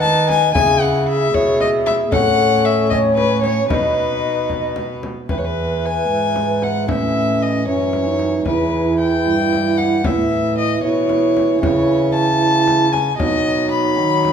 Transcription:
0.00 0.55 D#3 medium
0.00 0.57 D#4 medium
0.00 0.51 B4 medium
0.00 0.28 A5 medium
0.00 frame drum soft
0.29 0.53 G#5 medium
0.29 frame drum soft
0.54 1.32 C#3 medium
0.54 1.34 E4 medium
0.54 2.13 G#4 medium
0.54 0.83 G#5 medium
0.54 frame drum medium
0.81 1.07 F#5 medium
1.09 1.36 E5 medium
1.34 2.10 B2 medium
1.34 2.14 E4 medium
1.34 1.60 C#5 loud
1.34 frame drum medium
1.61 1.69 D#5 medium
1.61 frame drum soft
1.86 1.94 E5 medium
1.86 frame drum medium
2.11 3.67 A2 medium
2.11 3.72 C#4 medium
2.11 2.91 A4 medium
2.11 2.67 F#5 loud
2.11 frame drum medium
2.65 2.89 E5 medium
2.90 3.69 C#5 medium
2.90 2.98 D#5 medium
2.90 frame drum medium
3.15 3.41 B4 medium
3.15 frame drum soft
3.42 3.69 C#5 medium
3.42 frame drum soft
3.69 5.07 B2 medium
3.69 5.03 D#4 medium
3.69 5.00 B4 medium
3.69 4.88 D#5 medium
3.69 frame drum medium
4.50 frame drum soft
4.76 frame drum medium
5.03 frame drum soft
5.29 6.06 E2 medium
5.29 6.85 E3 medium
5.29 5.40 B4 medium
5.29 6.85 B4 medium
5.29 frame drum medium
5.38 5.46 C#5 medium
5.45 5.87 B4 medium
5.85 6.64 G#5 medium
6.10 6.91 G#2 medium
6.36 frame drum soft
6.62 6.89 F#5 medium
6.62 frame drum soft
6.88 7.69 A2 medium
6.88 7.66 E3 medium
6.88 7.66 C#4 medium
6.88 7.44 E5 medium
6.88 frame drum medium
7.43 7.67 D#5 medium
7.67 8.46 F#2 medium
7.67 8.46 E3 medium
7.67 8.08 C#4 medium
7.67 8.45 C#5 medium
7.93 frame drum soft
8.07 8.47 D#4 soft
8.19 frame drum soft
8.46 9.28 E2 medium
8.46 10.02 E3 medium
8.46 10.02 E4 medium
8.46 8.99 B4 medium
8.46 frame drum medium
8.99 9.79 G5 medium
9.26 10.06 G2 medium
9.53 frame drum soft
9.78 10.07 F#5 medium
9.78 frame drum soft
10.04 10.83 A2 medium
10.04 10.81 E3 soft
10.04 10.82 E4 medium
10.04 10.57 E5 medium
10.04 frame drum medium
10.58 10.83 D#5 medium
10.83 11.60 B2 medium
10.83 11.60 E3 medium
10.83 11.60 E4 medium
10.83 11.60 C#5 medium
11.09 frame drum soft
11.37 frame drum soft
11.61 13.16 C#3 medium
11.61 12.88 E3 medium
11.61 12.89 E4 medium
11.61 12.13 C#5 medium
11.61 frame drum medium
12.15 12.94 A5 medium
12.67 frame drum soft
12.93 13.17 G#5 medium
12.93 frame drum soft
13.17 13.99 B2 medium
13.17 14.33 F#3 medium
13.17 14.33 D#4 medium
13.17 13.70 D#5 medium
13.17 frame drum medium
13.71 14.33 B5 medium
13.98 14.33 D#3 medium
14.25 frame drum soft

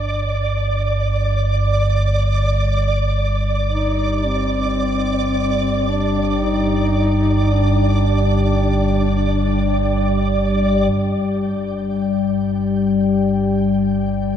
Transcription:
0.00 10.90 G1 medium
0.00 10.90 G2 medium
0.00 0.39 D4 medium
0.00 10.94 D5 medium
2.07 14.37 G3 medium
2.97 14.37 D5 medium
3.70 4.28 D#4 loud
3.86 14.37 G4 medium
4.27 5.90 C4 medium
5.89 6.43 D4 medium
6.02 14.37 G5 medium
6.42 7.53 D#4 loud
7.52 10.34 D4 medium
10.91 14.37 G1 medium
10.91 14.37 G2 medium
10.91 14.37 G5 medium

